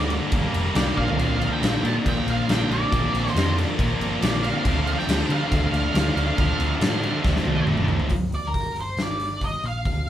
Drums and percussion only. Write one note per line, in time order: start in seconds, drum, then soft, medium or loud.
0.10 crash medium
0.32 kick loud
0.32 crash medium
0.54 crash medium
0.75 snare loud
0.75 crash medium
0.97 kick medium
1.08 floor tom medium
1.19 crash medium
1.41 crash medium
1.63 snare loud
1.63 crash medium
1.85 crash medium
2.06 kick loud
2.06 crash medium
2.28 crash medium
2.49 snare loud
2.49 crash medium
2.71 crash medium
2.92 kick loud
2.92 crash medium
3.15 crash medium
3.27 snare soft
3.36 snare loud
3.36 crash medium
3.58 crash medium
3.79 kick loud
3.79 crash medium
4.01 crash medium
4.22 snare loud
4.22 crash medium
4.44 crash medium
4.65 kick loud
4.65 crash medium
4.87 crash medium
4.99 snare soft
5.09 snare loud
5.09 crash medium
5.30 crash medium
5.52 kick loud
5.52 crash medium
5.74 crash medium
5.95 snare loud
5.95 crash medium
6.17 crash medium
6.38 kick loud
6.38 crash medium
6.60 crash medium
6.81 snare loud
6.81 crash medium
7.03 crash medium
7.24 kick loud
7.24 snare medium
7.36 snare medium
7.45 high tom medium
7.56 high tom medium
7.67 mid tom medium
7.77 mid tom medium
7.88 floor tom medium
8.00 floor tom medium
8.09 kick loud
8.09 open hi-hat medium
8.32 open hi-hat medium
8.54 kick medium
8.54 open hi-hat medium
8.76 open hi-hat soft
8.97 snare medium
8.97 open hi-hat medium
9.20 open hi-hat medium
9.41 kick medium
9.41 open hi-hat medium
9.64 open hi-hat soft
9.85 kick loud
9.85 open hi-hat medium